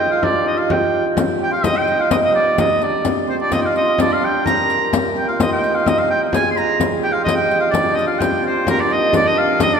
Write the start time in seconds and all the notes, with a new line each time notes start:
Already playing: D#4 F4 G4 A#4
0.11 F4 F5
0.22 D4 D5, frame drum
0.45 D#4 D#5, frame drum
0.57 F4 F5
0.70 G4 G5, frame drum
1.17 riq, frame drum
1.39 G4 G5, frame drum
1.51 F4 F5
1.64 D#4 D#5, riq, frame drum
1.75 G4 G5
1.87 riq, frame drum
2.00 F4 F5
2.11 D#4 D#5, riq, frame drum
2.23 D#4 D#5
2.35 D5, frame drum
2.58 D#4 D#5, riq, frame drum
2.81 D4 D5, riq, frame drum
3.05 riq, frame drum
3.27 C4 C5, frame drum
3.40 D4 D5
3.48 D#4 F4 D#5, riq, frame drum
3.62 F4 F5 G5
3.72 F4, riq, frame drum
3.77 D#5
3.81 F4
3.98 D4 D5, riq, frame drum
4.10 F4 F5
4.22 G4 G5, frame drum
4.45 A#4 A#5, riq, frame drum
4.62 A#4
4.70 riq
4.77 A#4
4.93 riq, frame drum
5.16 G4 G5, frame drum
5.28 F4 F5
5.40 D#4 D#5, riq, frame drum
5.53 G4 G5
5.64 riq, frame drum
5.75 F4 F5
5.86 D#4 D#5, riq, frame drum
5.98 F4 F5
6.10 G5, frame drum
6.32 G#4 G#5, riq, frame drum
6.51 C6
6.56 A#5, riq, frame drum
6.80 riq, frame drum
7.03 G4 G5, frame drum
7.12 F4 F5
7.24 D#4 D#5, frame drum
7.28 riq
7.36 G4 G5
7.51 riq, frame drum
7.60 F4 F5
7.71 D4 D5, riq, frame drum
7.94 D#5, frame drum
7.99 riq
8.07 F4 F5
8.19 G4 G5, riq, frame drum
8.44 C4 C5
8.67 A#3 A#4, riq, frame drum
8.79 D4 D5
8.90 D#4 D#5
9.13 D4 D5, riq, frame drum
9.27 D#5
9.38 F5
9.60 D#4 D#5, riq, frame drum
9.72 D4 D5